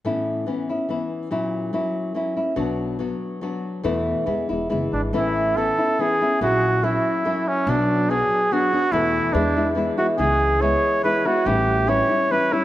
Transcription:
<<
  \new Staff \with { instrumentName = "Trumpet" } { \time 3/4 \key a \major \tempo 4 = 142 r2. | r2. | r2. | r2 r8 d'8 |
e'4 a'4 gis'4 | fis'4 e'4. cis'8 | d'4 gis'4 fis'4 | e'4 d'4 r8 fis'8 |
gis'4 cis''4 b'8 fis'8 | g'4 cis''4 b'8 e'8 | }
  \new Staff \with { instrumentName = "Nylon-string guitar" } { \time 3/4 \key a \major <a, e b cis' e'>4 <e b cis' e'>8 <b cis' e'>8 <e b cis' e'>4 | <ais, fis ais cis' e'>4 <fis ais cis' e'>4 <fis ais cis' e'>8 <ais cis' e'>8 | <b, fis b d' fis'>4 <fis b d' fis'>4 <fis b d' fis'>4 | <e, b, e a b e'>4 <e gis b e'>8 <e gis b e'>8 <e gis b e'>4 |
<a, e b cis' e'>4 <e b cis' e'>8 <b cis' e'>8 <e b cis' e'>8 <b cis' e'>8 | <ais, fis ais cis' e'>4 <fis ais cis' e'>4 <fis ais cis' e'>4 | <b, fis b d' fis'>4 <fis b d' fis'>4 <fis b d' fis'>8 <b d' fis'>8 | <e, b, e a b e'>4 <e gis b e'>8 <e gis b e'>8 <e gis b e'>8 <e gis b e'>8 |
<cis e gis b e'>4 <e gis b e'>4 <e gis b e'>8 <gis b e'>8 | <a, e g cis' e'>4 <e g cis' e'>8 <g cis' e'>8 <e g cis' e'>8 <g cis' e'>8 | }
  \new Staff \with { instrumentName = "Upright bass" } { \clef bass \time 3/4 \key a \major r2. | r2. | b,,2 r4 | e,4 e,8 e,,8 fis,,8 gis,,8 |
a,,2 r4 | ais,,2 r4 | b,,2 r4 | e,4 e,2 |
cis,2 r4 | a,,2 r4 | }
>>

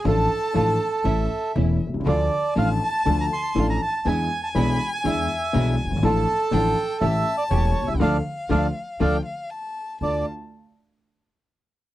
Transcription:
<<
  \new Staff \with { instrumentName = "Violin" } { \time 4/4 \key d \minor \tempo 4 = 121 a''2 e''4. r8 | a''1 | gis''1 | a''4 g''4 a''2 |
f''2 g''8 f''8 a''4 | a''8 r2. r8 | }
  \new Staff \with { instrumentName = "Bandoneon" } { \time 4/4 \key d \minor a'2. r4 | d''4 f''8 a''8. bes''16 c'''8. bes''16 a''8 | gis''8. a''16 b''8. gis''16 e''4. r8 | a'2 e''8. d''16 cis''8. e''16 |
<a' d'' f''>8 r8 <a' d'' f''>8 r8 <a' d'' f''>8 r4. | d''8 r2. r8 | }
  \new Staff \with { instrumentName = "String section" } { \time 4/4 \key d \minor <a d' f'>8 r8 <a d' f'>8 r8 <a cis' e'>8 r8 <a cis' e'>8 r8 | <a d' f'>8 r8 <a d' f'>8 r8 <a d' f'>8 r8 <a d' f'>8 r8 | <gis d' e'>8 r8 <gis d' e'>8 r8 <gis d' e'>8 r8 <gis d' e'>8 r8 | <a d' f'>8 r8 <a d' f'>8 r8 <a cis' g'>8 r8 <a cis' g'>8 r8 |
<a d' f'>8 r8 <a d' f'>8 r8 <a d' f'>8 r4. | <a d' f'>8 r2. r8 | }
  \new Staff \with { instrumentName = "Upright piano" } { \clef bass \time 4/4 \key d \minor <a,, a, f a d' a'>8 r8 <a,, a, f a d' a'>8 r8 <a,, a, e a cis' a'>8 r8 <e,, e, e a cis' a'>8 r32 b,,32 c,32 cis,32 | <d, d f a d' a'>8 r8 <a,, a, f a d' a'>8 r8 <d, d f a d' a'>8 r8 <a,, a, f a d' a'>8 r8 | <e, e b d' gis'>8 r8 <b,, b, e b d' gis'>8 r8 <e, e b d' gis'>8 r8 <b,, b, e b d' gis'>8 r32 fis,,32 g,,32 gis,,32 | <a,, a, f a d' a'>8 r8 <a,, a, f a d' a'>8 r8 <a,, a, e a cis' g'>8 r8 <e,, e, e a cis' g'>8 r32 b,,32 c,32 cis,32 |
<d f a>8 r8 <d f a>8 r8 <d f a>8 r4. | <d, a d' f'>8 r2. r8 | }
  \new Staff \with { instrumentName = "Upright bass" } { \clef bass \time 4/4 \key d \minor a,,16. r8 r32 a,,16. r8 r32 a,,16. r8 r32 e,,16. r16 b,,32 c,32 cis,32 | d,16. r8 r32 a,,16. r8 r32 d,16. r8 r32 a,,16. r8 r32 | e,16. r8 r32 b,,16. r8 r32 e,16. r8 r32 b,,16. r16 fis,,32 g,,32 gis,,32 | a,,16. r8 r32 a,,16. r8 r32 a,,16. r8 r32 e,,16. r16 b,,32 c,32 cis,32 |
d,16. r8 r32 d,16. r8 r32 d,16. r4. r32 | d,8 r2. r8 | }
>>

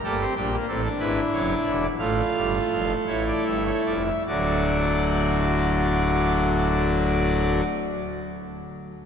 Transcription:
<<
  \new Staff \with { instrumentName = "Pipe organ" } { \time 6/8 \key a \phrygian \tempo 4. = 50 << { a'8 g'8 a'8 b'8 cis''8 d''8 | f''4. cis''16 d''16 e''16 cis''16 d''16 e''16 | <fis d' d''>2.~ | <fis d' d''>2. | } \\ { g'4. e'4. | f'4. e'4. | fis'2.~ | fis'2. | } >> }
  \new Staff \with { instrumentName = "Pipe organ" } { \clef bass \time 6/8 \key a \phrygian << { bes16 c'16 d'16 bes16 c'16 d'4.~ d'16 | a2. | a2.~ | a2. | } \\ { <g,, g,>8 <bes,, bes,>8 <a,, a,>8 <gis,, gis,>8 <fis,, fis,>8 <e,, e,>8 | <a,, a,>8 <g,, g,>8 <f,, f,>8 <a,, a,>8 <g,, g,>8 <f,, f,>8 | <d,, d,>2.~ | <d,, d,>2. | } >> }
>>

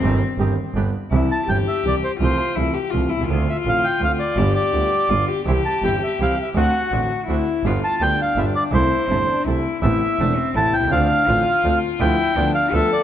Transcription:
<<
  \new Staff \with { instrumentName = "Bandoneon" } { \time 3/4 \key c \minor \tempo 4 = 166 r2. | \key c \major r8 a''8 g''8 e''8 d''8 c''8 | c''4 r2 | r8 e''8 f''8 g''8 f''8 d''8~ |
d''8 d''2 r8 | r8 a''8 g''8 e''8 f''8 e''8 | fis''4 r2 | r8 a''8 g''8 f''8 e''8 d''8 |
c''2 r4 | \key a \minor e''2 a''8 g''8 | f''2~ f''8 r8 | g''4. f''8 e''8 d''8 | }
  \new Staff \with { instrumentName = "Cello" } { \time 3/4 \key c \minor c'2 r4 | \key c \major e'4 g'2 | f'4 e'8 g'8 f'8 e'8 | f'2. |
g'2 f'8 g'8 | g'2. | fis'2 e'4 | f'4 d'2 |
e'4 c'8 d'8 e'4 | \key a \minor e'4 d'8 c'8 e'4 | d'4 f'2 | e'4 d'4 a'4 | }
  \new Staff \with { instrumentName = "Bandoneon" } { \time 3/4 \key c \minor <c' ees' g'>8 r8 <c' ees' g'>8 r8 <b d' g'>8 r8 | \key c \major r2. | r2. | r2. |
r2. | <c' e' g'>8 r8 <c' e' g'>8 r8 <c' e' g'>8 r8 | <c' d' fis'>8 r8 <c' d' fis'>8 r8 <c' d' fis'>8 r8 | <b f' g'>8 r8 <b f' g'>8 r8 <b f' g'>8 r8 |
<c' e' a'>8 r8 <c' e' a'>8 r8 <c' e' a'>8 r8 | \key a \minor <b c' a'>8 r8 <b c' a'>8 r8 <b c' a'>8 r8 | <c' d' f'>8 r8 <c' d' f'>8 r8 <c' d' f'>8 r8 | <b d' f'>8 r8 <b d' f'>8 r8 <b d' f'>8 r8 | }
  \new Staff \with { instrumentName = "Grand piano" } { \clef bass \time 3/4 \key c \minor <g,, g, ees g c' g'>8 r8 <g,, g, ees g c' g'>8 r8 <g,, g, d g b g'>8 r8 | \key c \major <c, c e g c' g'>8 r8 <g,, g, e g c' g'>8 r8 <c, c e g c' g'>8 r8 | <c, c e a c' f'>8 r8 <c, c e a c' f'>8 r8 <c, c e a c' f'>8 r32 b,,32 c,32 des,32 | <d, d a c' f'>8 r8 <a,, a, d a c' f'>8 r8 <d, d a c' f'>8 r8 |
<g,, g, d g b f'>8 r8 <d, d g b f'>8 r8 <g,, g, d g b f'>8 r8 | <c, c e g c' g'>8 r8 <g,, g, e g c' g'>8 r8 <c, c e g c' g'>8 r8 | <d, d a c' fis'>8 r8 <a,, a, d a c' fis'>8 r8 <d, d a c' fis'>8 r8 | <g,, g, d g b f'>8 r8 <d, d g b f'>8 r8 <g,, g, d g b f'>8 r8 |
<c, c g a e'>8 r8 <g,, g, c g a e'>8 r8 <c, c g a e'>8 r8 | \key a \minor <a,, a, c a b e'>8 r8 <e,, e, c a b e'>8 r8 <a,, a, c a b e'>8 r32 b,,32 c,32 cis,32 | <d, d a c' f'>8 r8 <a,, a, d a c' f'>8 r8 <d, d a c' f'>8 r8 | <d, d f b f'>8 r8 <d, d f b f'>8 r8 <d, d f b f'>8 r8 | }
  \new Staff \with { instrumentName = "Double bass" } { \clef bass \time 3/4 \key c \minor g,,8 r8 g,,8 r8 g,,8 r8 | \key c \major c,8 r8 g,,8 r8 c,8 r8 | c,8 r8 c,8 r8 c,8 c,8 | d,8 r8 a,,8 r8 d,8 r8 |
g,,8 r8 d,8 r8 g,,8 r8 | c,8 r8 g,,8 r8 c,8 r8 | d,8 r8 a,,8 r8 d,8 r8 | g,,8 r8 d,8 r8 g,,8 r8 |
c,8 r8 g,,8 r8 c,8 r8 | \key a \minor a,,8 r8 e,,8 r8 a,,8 c,8 | d,8 r8 a,,8 r8 d,8 r8 | d,8 r8 d,8 r8 d,8 r8 | }
>>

